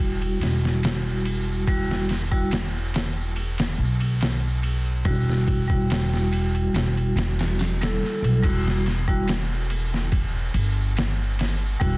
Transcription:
Already playing: E1 G3 E4 F#4
0.22 ride
0.40 E1, snare, ride
0.65 snare
0.83 snare, ride
1.25 ride
1.67 G3 E4 F#4, kick, ride
1.91 snare
2.09 snare, ride
2.31 G3 E4 F#4, kick
2.51 snare, ride
2.94 snare, ride
3.36 ride
3.58 snare, ride
3.78 B1
4.00 ride
4.21 snare, ride
4.63 ride
5.05 E1 G3 E4 F#4, kick, ride
5.29 snare
5.48 kick, ride
5.68 G3 E4 F#4, kick
5.90 snare, ride
6.14 snare
6.32 ride
6.55 ride
6.73 E1, snare, ride
6.97 ride
7.16 E1, snare, ride
7.39 snare, ride
7.59 snare, ride
7.81 G3 E4 A4, snare, ride
8.03 snare
8.22 B1, ride
8.42 E1 G3 E4 F#4, kick, crash, ride
8.68 snare
8.86 snare, ride
9.08 G3 E4 F#4, kick
9.28 snare, ride
9.70 ride
9.94 snare
10.12 kick, ride
10.54 G1, ride
10.97 snare, ride
11.39 snare, ride
11.80 E1 G3 E4 F#4, kick, ride

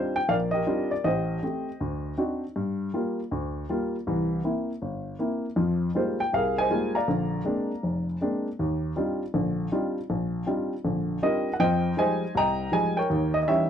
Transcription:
Already playing: G3 C4 D4 D#4 F4 C5
0.16 G5
0.29 A#1 A#4 D5 F5
0.51 G4 A#4 D#5
0.66 G3 C4 D4 D#4 F4
0.91 D5
1.04 A1 G4 C5 D#5
1.43 A3 C4 G4
1.80 D2
2.18 C4 D4 D#4 F#4
2.56 G2
2.94 G3 A#3 F4
3.31 D2
3.69 G3 A#3 F4
4.07 C2 E3
4.44 A#3 C4 E4
4.82 G1
5.19 A#3 C4 E4
5.56 F2 F3
5.95 G3 G#3 A#3 D#4 F4 C5
6.20 G5
6.33 C2 G#4 A#4 F5
6.58 C5 D#5 G#5
6.70 G3 G#3 A#3 D#4 F4
6.95 D5 F5 A#5
7.08 A#1 D3
7.45 G#3 A#3 C4 D4
7.83 F1
8.21 G#3 A#3 C4 D4
8.59 D#2
8.96 G3 C4 D4 D#4 F4
9.34 A#1 D3
9.72 G3 C4 D4 D#4 F4
10.10 A#1
10.46 G3 C4 D4 D#4 F4
10.85 A#1 D3
11.22 G3 C4 D4 D#4 F4 G4 A#4 D#5
11.53 F#5
11.60 F2 F3 C5 D#5 G5
11.97 F3 G3 G#3 D#4 C5 D#5 G#5
12.35 C2 D#5 G5 A#5
12.72 F3 G3 G#3 D#4 G#5
12.97 A#4 C#5 G5
13.10 D#2
13.34 D#5
13.43 D#5
13.48 E3 G3 C#4 D#4 G4 C#5 E5

